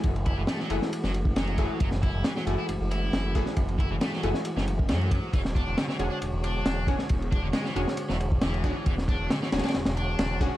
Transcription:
<<
  \new Staff \with { instrumentName = "Synth stab" } { \time 4/4 \key fis \minor \tempo 4 = 136 r4. <a e' fis' gis'>8 r4. <a e' fis' gis'>8 | r4. <a e' fis' gis'>8 r4. <a e' fis' gis'>8 | r4. <a e' fis' gis'>8 r2 | r4. <cis' d' fis' gis'>8 r4. <cis' d' fis' gis'>8 |
r4. <cis' d' fis' gis'>8 r4. <cis' d' fis' gis'>8 | r4. <cis' d' fis' gis'>8 r4. <cis' d' fis' gis'>8 | }
  \new Staff \with { instrumentName = "Tonewheel organ" } { \time 4/4 \key fis \minor fis'1~ | fis'1~ | fis'1~ | fis'1~ |
fis'1~ | fis'1 | }
  \new Staff \with { instrumentName = "Tonewheel organ" } { \clef bass \time 4/4 \key fis \minor <e gis a>1~ | <e gis a>1~ | <e gis a>1 | <d gis cis''>1~ |
<d gis cis''>1~ | <d gis cis''>1 | }
  \new Staff \with { instrumentName = "Distorted electric guitar" } { \clef bass \time 4/4 \key fis \minor r8 e'16 e16 a16 fis16 b16 r8 fis16 r8 fis4 | fis16 r16 e'8 e16 fis16 r16 e'16 r8 e'4 r8 | r8 e'16 e16 a16 fis16 b16 r8 fis16 r8 fis4 | e16 r16 d'8 d16 e16 r16 d'16 r8 d'4 r8 |
r8 d'16 d16 gis16 e16 gis16 r8 e16 r8 e4 | e16 r16 d'8 d16 e16 r16 d'16 r8 d'4 r8 | }
  \new Staff \with { instrumentName = "Detuned saw bass" } { \clef bass \time 4/4 \key fis \minor fis,,8. fis,,16 r8 fis,,16 r8 fis,,8. fis,,8. r16 | fis,,8. fis,,16 r8 fis,,16 r16 fis,,16 fis,,8. fis,,8. r16 | fis,,8. fis,,16 r8 fis,,16 r8 fis,,8. fis,8. r16 | e,,8. e,,16 r8 e,,16 r16 e,,16 e,,8. e,,8. r16 |
e,,8. e,,16 r8 e,,16 r8 e,,8. e,,8. r16 | e,,8. e,,16 r8 e,,16 r16 e,,16 e,,8. e,,8. r16 | }
  \new DrumStaff \with { instrumentName = "Drums" } \drummode { \time 4/4 <bd cymr>16 cymr16 <bd cymr>8 <cymr sn>16 sn16 cymr16 sn16 cymr16 sn16 cymr16 bd16 <cymr sn>16 cymr16 <bd cymr>8 | <bd cymr>16 sn16 <bd cymr>8 <cymr sn>16 sn16 cymr8 cymr8 cymr8 <cymr sn>8 <bd cymr>16 sn16 | <bd cymr>16 cymr16 <bd cymr>8 <cymr sn>16 sn16 cymr16 sn16 cymr16 sn16 cymr16 bd16 <cymr sn>16 cymr16 <bd cymr>8 | <bd cymr>16 sn16 <bd cymr>8 <cymr sn>16 sn16 cymr8 cymr8 cymr8 <cymr sn>8 <bd cymr>16 sn16 |
<bd cymr>16 cymr16 <bd cymr>8 <cymr sn>16 sn16 cymr16 sn16 cymr16 sn16 cymr16 bd16 <cymr sn>16 cymr16 <bd cymr>8 | <bd cymr>16 sn16 <bd cymr>8 <cymr sn>16 sn16 <cymr sn>32 <cymr sn>32 <cymr sn>32 <cymr sn>32 <cymr sn>16 <cymr sn>16 cymr8 <cymr sn>8 <bd cymr>8 | }
>>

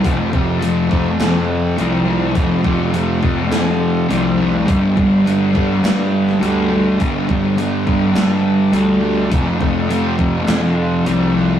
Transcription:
<<
  \new Staff \with { instrumentName = "Distorted electric guitar" } { \clef bass \time 4/4 \key f \mixolydian \tempo 4 = 103 <f, c f>8 <c f>8 <f, c f>8 <c f>4. <f, c f>8 <c f>8 | <f, c f>8 <c f>8 <f, c f>8 <c f>4. <f, c f>8 <c f>8 | <g, d g>8 <d g>8 <g, d g>8 <d g>4. <g, d g>8 <d g>8 | <g, d g>8 <d g>8 <g, d g>8 <d g>4. <g, d g>8 <d g>8 |
<f, c f>8 <c f>8 <f, c f>8 <c f>4. <f, c f>8 <c f>8 | }
  \new Staff \with { instrumentName = "Picked electric bass" } { \clef bass \time 4/4 \key f \mixolydian f,,8 f,,4. f,4 c,4 | f,,8 f,,4. f,4 c,4 | g,,8 g,,4. g,4 d,4 | g,,8 g,,4. g,4 d,4 |
f,,8 f,,4. f,4 c,4 | }
  \new DrumStaff \with { instrumentName = "Drums" } \drummode { \time 4/4 <hho bd>8 bd8 hho8 bd8 <hho sn>4 hho4 | <hho bd>8 bd8 hho8 bd8 <hho sn>4 hho4 | <hho bd>8 bd8 hho8 bd8 <hho sn>8. sn16 hho4 | <hho bd>8 bd8 hho8 bd8 <hho sn>4 hho4 |
<hho bd>8 bd8 hho8 bd8 <hho sn>4 hho4 | }
>>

